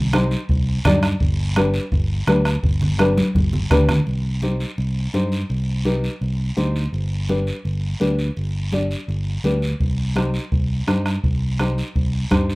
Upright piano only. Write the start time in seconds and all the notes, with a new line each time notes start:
0.13 D#4 G4 C5
0.85 D#4 G4 D5
1.56 D4 G4 B4
2.27 D4 G4 B4
2.98 D4 G4 B4
3.70 D4 G4 B4
4.43 D#4 G4 C5
5.14 D#4 G4 C5
5.85 D#4 G4 B4
6.57 D#4 G4 C5
7.29 D4 G4 B4
8.00 D4 G4 B4
8.72 D4 G4 D5
9.44 D4 G4 B4
10.16 D#4 G4 C5
10.87 D#4 G4 C5
11.59 D#4 G4 C5
12.31 D#4 G4 C5